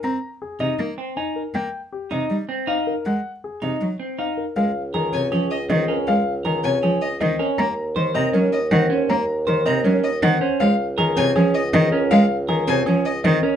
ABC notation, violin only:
X:1
M:4/4
L:1/8
Q:1/4=159
K:Ab
V:1 name="Violin"
z8 | z8 | z8 | [K:Db] z3 a z e z2 |
z3 a z e z2 | z3 b z e z2 | z3 b z e z2 | f z2 a z e z2 |
f z2 a z e z2 |]